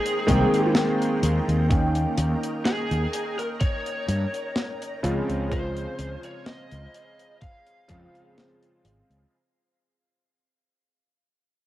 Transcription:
Already playing: D#3 G#3 A#3 C4 G#4 G5 A#5 C6
0.06 closed hi-hat
0.27 C2 D#3 G#3 A#3 C4 G5, kick, closed hi-hat
0.54 closed hi-hat
0.75 snare, closed hi-hat
1.02 closed hi-hat
1.23 D#2, closed hi-hat
1.48 D#2, closed hi-hat
1.69 D#3 A#3 C#4 A#4 D#5 G5 A#5, kick, closed hi-hat
1.95 closed hi-hat
2.17 D#2, closed hi-hat
2.43 closed hi-hat
2.65 G#4, snare, closed hi-hat
2.91 D#2, closed hi-hat
3.13 closed hi-hat
3.39 A#4, closed hi-hat
3.61 C#5, kick, closed hi-hat
3.86 closed hi-hat
4.08 G2, closed hi-hat
4.34 closed hi-hat
4.56 snare, closed hi-hat
4.82 closed hi-hat
5.03 C#2 C#3 F3 G#3 C4 F4 C5 F5 G#5, closed hi-hat
5.29 C#2, closed hi-hat
5.49 C#3 F3 G#3 C4 F4 C5, kick, closed hi-hat
5.77 closed hi-hat
5.99 C#2, closed hi-hat
6.23 C#5, closed hi-hat
6.46 D#5, snare, closed hi-hat
6.71 C#2, closed hi-hat
6.94 closed hi-hat
7.19 closed hi-hat
7.41 F5, kick, closed hi-hat
7.67 closed hi-hat
7.88 F2 C#3 F3 G#3 C4 F4, kick, closed hi-hat
8.15 closed hi-hat
8.38 snare, closed hi-hat
8.63 closed hi-hat
8.84 G#1, closed hi-hat
9.10 C#2, closed hi-hat

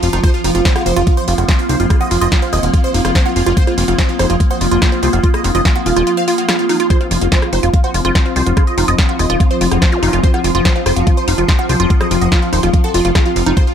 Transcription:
Already playing: F3 C4 F4 F5 A5
0.03 F1 F4, open hi-hat
0.13 F1 D#4 F4, closed hi-hat
0.24 A#3 F4 C5, kick, cross-stick, closed hi-hat
0.34 F4, closed hi-hat
0.43 F1 D#4 F4 C6, open hi-hat
0.55 F1 F4, closed hi-hat
0.65 C5, kick, snare, closed hi-hat
0.76 F4 F#5, cross-stick, closed hi-hat
0.86 F1 F4 C5, open hi-hat
0.96 F1 F4, closed hi-hat
1.07 F4, kick, closed hi-hat
1.17 C5, closed hi-hat
1.28 F1 F4, open hi-hat
1.38 F1 F4 F#5, cross-stick, closed hi-hat
1.49 F4 C5, kick, snare, closed hi-hat
1.59 F4, closed hi-hat
1.69 C2 D#4 C5, open hi-hat
1.80 F1 F4, closed hi-hat
1.90 F4, kick, cross-stick, closed hi-hat
2.01 D#5 F#5, closed hi-hat
2.11 F1 F4, open hi-hat
2.21 F1 F4 D#5, closed hi-hat
2.32 F4, kick, snare, closed hi-hat
2.42 F4 C5, closed hi-hat
2.53 D#1 F4 D#5, cross-stick, open hi-hat
2.63 D#1 F4 F#5, closed hi-hat
2.73 F4, kick, closed hi-hat
2.84 C5, closed hi-hat
2.94 F1 D#4 F4, open hi-hat
3.05 F1 F4, cross-stick, closed hi-hat
3.15 C5, kick, snare, closed hi-hat
3.26 F4 F#5, closed hi-hat
3.36 F1 F4, open hi-hat
3.46 F1 F4, closed hi-hat
3.57 F4 C5, kick, closed hi-hat
3.67 F4 C5, cross-stick, closed hi-hat
3.77 F1 F4 D#6, open hi-hat
3.88 F1 F4 F#5, closed hi-hat
3.98 F4 C5, kick, snare, closed hi-hat
4.09 F4, closed hi-hat
4.19 F1 D#4 C5, cross-stick, open hi-hat
4.30 F1 F4, closed hi-hat
4.40 F4, kick, closed hi-hat
4.51 C5 F#5, closed hi-hat
4.61 F1 F4, open hi-hat
4.71 F1 F4, closed hi-hat
4.82 C5, kick, cross-stick, snare, closed hi-hat
4.92 F4 C5, closed hi-hat
5.03 C2 F4 C5, open hi-hat
5.13 F1 F4 F#5, closed hi-hat
5.23 F4, kick, closed hi-hat
5.34 D#5, cross-stick, closed hi-hat
5.44 F1 D#4 F4, open hi-hat
5.55 F1 F4 D#5, closed hi-hat
5.65 F4, kick, snare, closed hi-hat
5.76 F4 F#5, closed hi-hat
5.86 D#1 F4 F5, open hi-hat
5.96 D#1 F4, cross-stick, closed hi-hat
6.07 F4, closed hi-hat
6.17 C5 F5, closed hi-hat
6.28 F4, open hi-hat
6.38 F4 F#5, closed hi-hat
6.48 F4 F5, cross-stick, snare, closed hi-hat
6.59 F4, closed hi-hat
6.69 D#4 F4, open hi-hat
6.80 F4, closed hi-hat
6.90 F3 F4 C5, kick, cross-stick, closed hi-hat
7.01 F4 C5, closed hi-hat
7.10 F1 F4 C6, open hi-hat
7.21 F1 F4 F#5, closed hi-hat
7.32 F4 C5, kick, snare, closed hi-hat
7.42 F4, cross-stick, closed hi-hat
7.53 F1 D#4 C5, open hi-hat
7.63 F1 F4, closed hi-hat
7.74 F4, kick, closed hi-hat
7.84 C5 F#5, closed hi-hat
7.94 F1 F4, open hi-hat
8.05 F1 F4, cross-stick, closed hi-hat
8.15 F4 C5, kick, snare, closed hi-hat
8.26 F4 C5, closed hi-hat
8.36 C2 F4 C5, open hi-hat
8.46 F1 F4 F#5, closed hi-hat
8.57 F4, kick, cross-stick, closed hi-hat
8.67 D#5, closed hi-hat
8.78 F1 D#4 F4, open hi-hat
8.88 F1 F4 D#5, closed hi-hat
8.98 F4, kick, snare, closed hi-hat
9.09 F4 F#5, closed hi-hat
9.19 D#1 F4 D#5, cross-stick, open hi-hat
9.30 D#1 F4, closed hi-hat
9.40 F4, kick, closed hi-hat
9.51 C5, closed hi-hat
9.61 F1 F4, open hi-hat
9.71 F1 F4 F#5, cross-stick, closed hi-hat
9.82 F4 C5, kick, snare, closed hi-hat
9.92 F4, closed hi-hat, zap
10.03 F1 D#4 F4, open hi-hat
10.13 F1 F4, closed hi-hat
10.24 C5, kick, closed hi-hat
10.34 F4 F#5, cross-stick, closed hi-hat
10.44 F1 F4 A5, open hi-hat
10.55 F1 F4, closed hi-hat
10.65 F4 C5, kick, snare, closed hi-hat
10.76 F4 C5, closed hi-hat
10.86 F1 F4 C5, cross-stick, open hi-hat
10.96 F1 F4 F#5, closed hi-hat
11.07 F4, kick, closed hi-hat
11.17 C5, closed hi-hat
11.28 F1 D#4 F4, open hi-hat
11.38 F1 F4, closed hi-hat
11.49 C5, kick, cross-stick, snare, closed hi-hat
11.59 F4 F#5, closed hi-hat
11.69 C2 F4 C5, open hi-hat
11.80 F1 F4, closed hi-hat
11.90 F4, kick, closed hi-hat
12.01 C5 D#5, cross-stick, closed hi-hat
12.11 F1 F4, open hi-hat
12.21 F1 D#5 F#5, closed hi-hat
12.32 F4, kick, snare, closed hi-hat
12.42 F4, closed hi-hat
12.53 D#1 D#4 C5, open hi-hat
12.63 D#1 F4, cross-stick, closed hi-hat
12.74 F4, kick, closed hi-hat
12.84 A4 F#5, closed hi-hat
12.94 F1 F4, open hi-hat
13.05 F1 F4, closed hi-hat
13.15 F4, kick, cross-stick, snare, closed hi-hat
13.26 F4 F5, closed hi-hat
13.36 F1 F4, open hi-hat
13.46 F1 D#4 F4, closed hi-hat
13.57 F4 C5, kick, cross-stick, closed hi-hat
13.67 F4, closed hi-hat

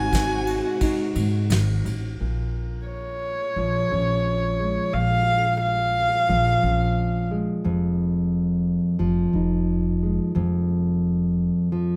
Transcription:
Already playing: G#1 G#2 C3 G#3 C4 D#4 F#4 G#5
0.13 kick, snare, ride
0.47 ride
0.81 D#4, kick, ride
1.15 G#2, ride
1.50 G#1, snare, ride
1.85 A1, ride
2.20 A#1 A#2
2.87 C#5
3.56 A#1 F3
3.92 A#1 C#4
4.60 G#3
4.93 A#1 A#2 F5
5.62 F5
6.29 A#1 F3
6.63 A#1 C#4
7.31 G#3
7.64 F1 F2
8.99 F1 F3
9.33 F1 D#4
10.03 G#3
10.35 F1 F2
11.72 F3

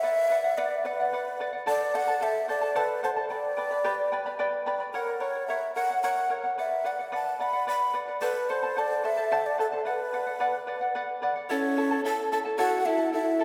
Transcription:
Already playing: E5
0.03 B4 D5 F#5
0.30 B4 D5 F#5
0.44 D5 F#5
0.58 B4 D5 F#5
0.85 B4 D5 F#5
1.00 D5 F#5
1.13 B4 D5 F#5
1.40 B4 D5 F#5
1.53 D5 F#5
1.66 A4 C5 D5 F#5 A5
1.94 A4 C5 F#5 A5
2.08 A4 C5 A5
2.21 A4 C5 E5 F#5 A5
2.48 A4 C5 D5 F#5 A5
2.61 A4 C5 A5
2.75 A4 B4 C5 D5 F#5 A5
3.03 A4 C5 F#5 A5
3.16 A4 C5 A5
3.30 B4 D5 G5 B5
3.57 B4 D5 G5 B5
3.71 B4 D5 B5
3.84 G4 B4 D5 G5 B5
4.12 B4 D5 G5 B5
4.26 B4 D5 B5
4.39 B4 D5 G5 B5
4.66 B4 D5 G5 B5
4.80 B4 D5 B5
4.94 A#4 C#5 F#5
5.21 A#4 C#5 F#5
5.35 C#5 F#5
5.48 A#4 C#5 E5 F#5
5.75 A#4 C#5 F#5
5.90 C#5 F#5
6.03 A#4 C#5 F#5
6.30 A#4 C#5 F#5
6.44 C#5 F#5
6.58 B4 D5 E5 F#5
6.84 B4 D5 F#5
6.99 D5 F#5
7.12 B4 D5 F#5 A5
7.40 B4 D5 F#5 B5
7.53 D5 F#5
7.67 B4 D5 F#5 B5
7.93 B4 D5 F#5
8.08 D5 F#5
8.21 A4 B4 C5 D5 F#5 A5
8.49 A4 C5 F#5 A5
8.63 A4 C5 A5
8.76 A4 C5 D5 F#5 A5
9.03 A4 C5 E5 F#5 A5
9.17 A4 C5 A5
9.31 A4 C5 D5 F#5 A5
9.46 D5
9.58 A4 C5 F#5 A5
9.72 A4 C5 A5
9.85 B4 D5 F#5
10.12 B4 D5 F#5
10.27 D5 F#5
10.40 B4 D5 F#5
10.67 B4 D5 F#5
10.81 D5 F#5
10.95 B4 D5 F#5
11.22 B4 D5 F#5
11.36 D5 F#5
11.49 C#4 E4 A4 C#5 E5 A5
11.77 E4 A4 E5 A5
11.91 E4 A4 A5
12.04 E4 A4 E5 A5
12.32 E4 A4 E5 A5
12.45 E4 A4 A5
12.58 E4 F#4 A4 C#5 E5 F#5 A5
12.85 E4 A4 E5 A5
12.98 E4 A4 A5
13.12 E4 A4 E5 A5
13.39 E4 A4 E5 A5

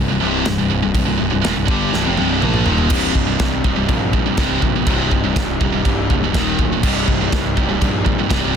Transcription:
0.08 C1 C2 G2
0.20 C1 C2 G2 C3
0.45 C1 C2 G2, snare, crash
0.58 C1 C2 G2
0.70 C1 C2 G2
0.82 C1 C2 G2
0.94 C1 C2 G2, kick, crash
1.05 C1 C2 G2
1.18 C1 C2 G2
1.30 C1 C2 G2
1.42 D#1 D#2 A#2, snare, crash
1.54 C1 C2 G2
1.65 G1 G2 D3 G3, kick
1.90 C1 C2 G2, snare
2.03 F1 F2 C3
2.15 C1 C2 G2 C3, high tom
2.40 A#1 A#2 F3 A#3, mid tom
2.54 mid tom
2.65 D#1 D#2 A#2 D#3, floor tom
2.78 floor tom
2.89 C1 C2 G2 C3 G3, kick, crash, china
2.93 D#4
3.14 C1 C2 G2, kick
3.27 C2 G2
3.39 C2 G2, kick, snare, china
3.64 C1 C2 G2 C3 G3 D#4, kick
3.76 C2 G2
3.88 A#1 C2 G2, kick, china
4.13 C2 G2, kick
4.26 C2 G2
4.37 C1 C2 G2 C3, kick, snare, china
4.62 A#1 C2 G2, kick
4.76 C2 G2
4.86 C1 C2 G2 C3 G3 D#4, kick, china
5.11 C1 C2 G2, kick
5.24 C2 G2
5.36 C1 C2 G2, kick, snare, china
5.60 D#1 C2 G2 C3 G3 D#4, kick
5.72 C2 G2
5.85 C1 C2 G2, kick, china
6.10 D1 C2 G2, kick
6.24 C2 G2
6.34 D#1 D#2 A#2 D#3, kick, snare, china
6.58 D1 D#2 A#2, kick
6.73 D#2 A#2
6.83 C1 C2 G2 C3 G3 D#4, kick, crash, china
7.07 C1 C2 G2, kick
7.21 C2 G2
7.32 C2 G2, kick, snare, china
7.56 C1 C2 G2 C3 G3 D#4, kick
7.69 C2 G2
7.81 A#1 C2 G2, kick, china
8.05 C2 G2, kick
8.19 C2 G2
8.29 C1 C2 G2 C3, kick, snare, china

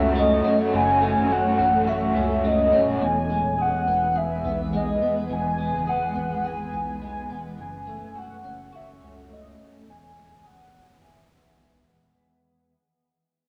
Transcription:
Already playing: C#2 F#2 F#3 A3 C#4 F#4 A4 C#5 E5
0.15 F#3 A3 C#4 F#4 D#5
0.43 A3 C#4 F#4
0.47 F#3
0.72 F#1 F#2 C#3 F#3 A3 C#4 F#4 G#5
1.00 A3 C#4 F#4
1.04 F#3
1.16 G#1
1.29 F#3 A3 C#4 F#4 F#5
1.33 F#4
1.58 A1 F#3 A3 C#4 F#4
1.86 F#2 C#3 F#3 A3 C#4 F#4 E5
2.15 C#2 F#3 A3 C#4 F#4
2.43 F#3 A3 C#4 F#4 D#5
2.72 D#1 F#3 A3 C#4 F#4
3.01 E1 E2 E3 G#3 B3 G#4 B4 G#5
3.30 G#3
3.45 D#1
3.58 G#4 F#5
3.87 E1 B3
4.16 G#4 E5
4.45 B1 B3
4.73 G#3 D#5
5.02 B3
5.30 E1 E2 G#5
5.59 G#3
5.73 F#1
5.87 G#4 F#5
6.15 G#1 B3
6.45 G#4 G#5
6.73 B1 B3
7.02 G#3 G#5
7.30 E1 B3
7.58 F#1 F#2 F#3 A3 C#4 A4 C#5 G#5
7.87 A3
8.01 E1
8.15 F#4 F#5
8.44 F#1 C#4
8.73 F#4 E5
9.01 C#2 C#4
9.30 A3 D#5
9.58 C#4
9.87 E1 E2 D#3 E3 B3 G#4 B4 G#5
10.16 G#3
10.30 F#1
10.44 G#4 F#5
10.73 G#1 B3
11.02 G#4 E5
11.30 B1 B3
11.59 G#3
11.87 D#1 B3

